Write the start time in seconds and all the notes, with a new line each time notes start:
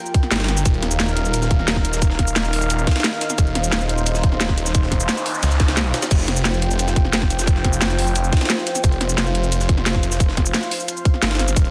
Already playing: F4 A#4 G5
0.06 cabasa
0.14 kick, closed hi-hat
0.23 snare
0.31 G1, snare, closed hi-hat, cabasa
0.36 snare, closed hi-hat
0.40 snare, closed hi-hat
0.44 snare, closed hi-hat
0.48 snare, closed hi-hat, cabasa
0.57 snare, cabasa
0.65 D#1 D#4 A#4 F5, kick, closed hi-hat, cabasa
0.74 closed hi-hat
0.83 snare, closed hi-hat
0.91 cabasa
1.00 D#1, snare, closed hi-hat, cabasa
1.08 cabasa
1.17 closed hi-hat
1.25 cabasa
1.34 closed hi-hat, cabasa
1.42 snare, cabasa
1.51 D#1, kick, closed hi-hat
1.59 snare
1.68 snare, closed hi-hat, cabasa
1.76 kick, snare
1.85 closed hi-hat, cabasa
1.93 snare, cabasa
2.02 kick, closed hi-hat, cabasa
2.10 snare
2.19 kick, snare, closed hi-hat
2.27 cabasa
2.36 D#1, snare, closed hi-hat, cabasa
2.44 snare, cabasa
2.53 open hi-hat
2.62 cabasa
2.70 closed hi-hat, cabasa
2.79 cabasa
2.87 kick, snare, closed hi-hat
2.91 snare, closed hi-hat
2.96 snare, closed hi-hat
3.00 snare, closed hi-hat
3.04 snare, closed hi-hat, cabasa
3.13 snare
3.21 snare, closed hi-hat, cabasa
3.30 snare, cabasa
3.38 D#1 C5, kick, closed hi-hat, cabasa
3.47 closed hi-hat
3.55 snare, closed hi-hat
3.64 cabasa
3.72 D#1, snare, closed hi-hat, cabasa
3.81 cabasa
3.89 closed hi-hat
3.98 cabasa
4.06 closed hi-hat, cabasa
4.15 snare, cabasa
4.23 D#1, kick, closed hi-hat
4.32 snare
4.41 snare, closed hi-hat, cabasa
4.49 kick, snare
4.58 closed hi-hat, cabasa
4.66 snare, cabasa
4.75 kick, closed hi-hat, noise sweep, cabasa
4.83 snare
4.92 kick, snare, closed hi-hat
5.00 cabasa
5.09 snare, closed hi-hat, cabasa
5.17 snare, cabasa
5.26 open hi-hat
5.34 cabasa
5.43 C#2, closed hi-hat, cabasa
5.51 cabasa
5.60 kick, snare, closed hi-hat
5.68 snare, closed hi-hat
5.77 snare, closed hi-hat, cabasa
5.94 snare, closed hi-hat, cabasa
6.02 snare, closed hi-hat, cabasa
6.11 F1 F4 C5 G5, kick, closed hi-hat, crash, cabasa
6.20 closed hi-hat
6.28 snare, closed hi-hat
6.37 cabasa
6.45 F1, snare, closed hi-hat, cabasa
6.54 cabasa
6.62 closed hi-hat
6.71 cabasa
6.79 closed hi-hat, cabasa
6.88 snare, cabasa
6.96 F1, kick, closed hi-hat
7.05 snare
7.13 snare, closed hi-hat, cabasa
7.22 kick, snare
7.30 closed hi-hat, cabasa
7.39 snare, cabasa
7.47 kick, closed hi-hat, cabasa
7.56 snare
7.64 kick, snare, closed hi-hat
7.73 cabasa
7.81 F1, snare, closed hi-hat, cabasa
7.90 snare, cabasa
7.99 open hi-hat
8.07 cabasa
8.16 closed hi-hat, cabasa
8.24 cabasa
8.33 kick, snare, closed hi-hat
8.37 snare, closed hi-hat
8.41 snare, closed hi-hat
8.45 snare, closed hi-hat
8.50 snare, closed hi-hat, cabasa
8.58 snare
8.67 snare, closed hi-hat, cabasa
8.75 snare, cabasa
8.84 F1 F5, kick, closed hi-hat, cabasa
8.92 closed hi-hat
9.01 snare, closed hi-hat
9.09 cabasa
9.18 F1, snare, closed hi-hat, cabasa
9.26 cabasa
9.35 closed hi-hat
9.43 cabasa
9.52 closed hi-hat, cabasa
9.61 snare, cabasa
9.69 F1, kick, closed hi-hat
9.78 snare
9.86 snare, closed hi-hat, cabasa
9.95 kick, snare
10.03 closed hi-hat, cabasa
10.12 snare, cabasa
10.20 kick, closed hi-hat, cabasa
10.29 snare
10.37 kick, snare, closed hi-hat
10.46 cabasa
10.54 snare, closed hi-hat, cabasa
10.63 snare, cabasa
10.71 open hi-hat
10.80 cabasa
10.88 closed hi-hat, cabasa
10.97 cabasa
11.05 kick, closed hi-hat
11.14 snare
11.22 G1, snare, closed hi-hat, cabasa
11.27 snare, closed hi-hat
11.31 snare, closed hi-hat
11.35 snare, closed hi-hat
11.39 snare, closed hi-hat, cabasa
11.48 snare, cabasa
11.56 D#1 D#4 A#4, kick, closed hi-hat, cabasa
11.65 closed hi-hat